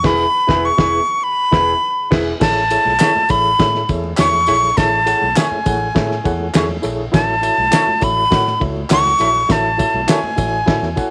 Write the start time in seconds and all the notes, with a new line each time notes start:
0.03 E1 B3 E4 G#4 B4 B5, kick, snare, crash
0.47 E1 B3 E4 G#4 B4 E5, kick, snare
0.65 C#6
0.77 E1 B3 E4 G#4 B4, kick, snare
1.24 B5
1.51 E1 B3 E4 G#4 B4 E5, kick, snare
2.11 E1 B3 E4 G#4 B4 E5, kick, snare, crash
2.40 A1 A2 E4 G#4 A4 C#5 E5 A5, kick, snare, crash, tambourine
2.56 muted conga
2.70 E4 G#4 A4 C#5 E5, ride, tambourine
2.85 B1, high conga
2.99 E4 G#4 A4 C#5 E5, snare, clap, ride, tambourine
3.15 muted fingered electric bass stroke, high conga
3.29 A1 E4 G#4 A4 C#5 E5 B5, kick, ride, tambourine, high conga, low conga
3.59 A2 E4 G#4 A4 C#5 E5, kick, snare, ride, tambourine, muted conga, high conga
3.75 snare, muted conga
3.89 E2 E4 G#4 A4 C#5 E5, kick, ride, tambourine
4.04 high conga
4.17 E2 E4 G#4 A4 C#5 E5 C#6, snare, clap, ride, tambourine, muted conga
4.33 high conga, low conga
4.47 A#1 E4 G#4 A4 C#5 E5, ride, tambourine
4.63 low conga
4.77 A1 A2 E4 G#4 A4 C#5 E5 A5, kick, snare, ride, tambourine
5.06 E4 G#4 A4 C#5 F#5, ride, tambourine
5.22 B1, high conga
5.36 E4 G#4 A4 C#5 E5 G#5, snare, clap, ride, tambourine
5.52 muted fingered electric bass stroke, muted conga, high conga
5.66 A1 E4 G#4 A4 C#5 F#5, kick, ride, tambourine, high conga, low conga
5.95 A2 E4 G#4 A4 C#5 E5, kick, snare, ride, muted conga, high conga
6.11 snare
6.24 E2 E4 G#4 A4 C#5 F#5, kick, ride, tambourine
6.40 high conga
6.53 E2 E4 G#4 A4 C#5 E5, snare, clap, ride, tambourine
6.69 muted conga, high conga, low conga
6.82 A#1 E4 G#4 A4 C#5 E5, ride, tambourine
6.99 low conga
7.12 A1 A2 E4 F#4 A4 C#5 E5 A5, kick, snare, ride, tambourine
7.29 muted conga
7.42 E4 F#4 A4 C#5 E5, ride, tambourine
7.58 B1, high conga
7.71 E4 F#4 A4 C#5 E5, snare, clap, ride, tambourine
7.87 muted fingered electric bass stroke, muted conga, high conga
8.00 A1 E4 F#4 A4 C#5 E5 B5, kick, ride, tambourine, high conga, low conga
8.30 A2 E4 F#4 A4 C#5 F#5, kick, snare, ride, tambourine, high conga
8.47 snare, muted conga
8.60 C#2 E4 F#4 A4 C#5 E5, kick, ride
8.76 high conga
8.89 C#2 E4 F#4 A4 C#5 F#5 C#6, snare, clap, ride, tambourine, muted conga
9.05 muted conga, high conga, low conga
9.19 A#1 E4 F#4 A4 C#5 E5, ride, tambourine
9.35 low conga
9.49 A1 A2 E4 F#4 A4 C#5 E5 A5, kick, snare, ride, tambourine, muted conga
9.77 E4 F#4 A4 C#5 E5, kick, ride, tambourine
9.94 B1, high conga
10.07 E4 F#4 A4 C#5 E5 G#5, snare, clap, ride, tambourine
10.23 muted fingered electric bass stroke, muted conga, high conga
10.36 A1 E4 F#4 A4 C#5 E5, kick, ride, tambourine, high conga, low conga
10.66 A2 E4 F#4 A4 C#5 E5, kick, snare, ride, high conga
10.82 E2, snare, muted conga
10.96 E4 F#4 A4 C#5 F#5, kick, ride, tambourine